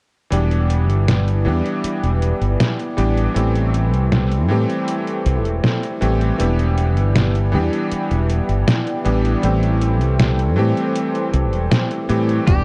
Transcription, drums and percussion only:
0.32 closed hi-hat
0.51 closed hi-hat
0.70 closed hi-hat
0.90 closed hi-hat
1.08 snare, closed hi-hat
1.28 closed hi-hat
1.66 closed hi-hat
1.84 closed hi-hat
2.03 closed hi-hat
2.22 closed hi-hat
2.42 closed hi-hat
2.60 snare, closed hi-hat
2.79 closed hi-hat
2.98 closed hi-hat
3.17 closed hi-hat
3.36 closed hi-hat
3.55 closed hi-hat
3.74 closed hi-hat
3.94 closed hi-hat
4.12 snare, closed hi-hat
4.31 closed hi-hat
4.70 closed hi-hat
4.88 closed hi-hat
5.07 closed hi-hat
5.26 closed hi-hat
5.45 closed hi-hat
5.64 snare, closed hi-hat
5.83 closed hi-hat
6.02 closed hi-hat
6.21 closed hi-hat
6.40 closed hi-hat
6.59 closed hi-hat
6.78 closed hi-hat
6.97 closed hi-hat
7.16 snare, closed hi-hat
7.35 closed hi-hat
7.73 closed hi-hat
7.92 closed hi-hat
8.11 closed hi-hat
8.30 closed hi-hat
8.49 closed hi-hat
8.68 snare, closed hi-hat
8.87 closed hi-hat
9.06 closed hi-hat
9.25 closed hi-hat
9.43 closed hi-hat
9.63 closed hi-hat
9.81 closed hi-hat
10.01 closed hi-hat
10.20 snare, closed hi-hat
10.39 closed hi-hat
10.77 closed hi-hat
10.96 closed hi-hat
11.15 closed hi-hat
11.34 closed hi-hat
11.53 closed hi-hat
11.72 snare, closed hi-hat
11.91 closed hi-hat
12.09 closed hi-hat
12.29 closed hi-hat
12.47 kick, closed hi-hat

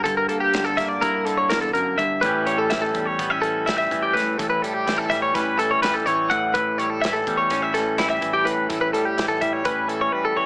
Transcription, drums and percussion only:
0.05 kick, closed hi-hat
0.29 closed hi-hat
0.53 snare, closed hi-hat
0.78 kick, snare, closed hi-hat
1.02 kick, closed hi-hat
1.26 closed hi-hat
1.50 snare, closed hi-hat
1.75 closed hi-hat
1.99 kick, closed hi-hat
2.23 kick, closed hi-hat
2.47 closed hi-hat
2.70 snare, closed hi-hat
2.95 kick, closed hi-hat
3.19 kick, closed hi-hat
3.43 closed hi-hat
3.67 snare, closed hi-hat
3.91 kick, closed hi-hat
4.17 snare, closed hi-hat
4.39 kick, closed hi-hat
4.64 closed hi-hat
4.88 snare, closed hi-hat
5.11 kick, snare, closed hi-hat
5.35 kick, snare, closed hi-hat
5.59 closed hi-hat
5.83 snare, closed hi-hat
6.07 closed hi-hat
6.31 kick, closed hi-hat
6.55 kick, closed hi-hat
6.79 closed hi-hat
7.04 snare, closed hi-hat
7.27 kick, closed hi-hat
7.50 kick, snare, closed hi-hat
7.75 snare, closed hi-hat
7.98 snare, closed hi-hat
8.22 kick, closed hi-hat
8.47 closed hi-hat
8.70 kick, closed hi-hat
8.94 closed hi-hat
9.18 snare, closed hi-hat
9.41 kick, closed hi-hat
9.65 kick, closed hi-hat
9.89 closed hi-hat

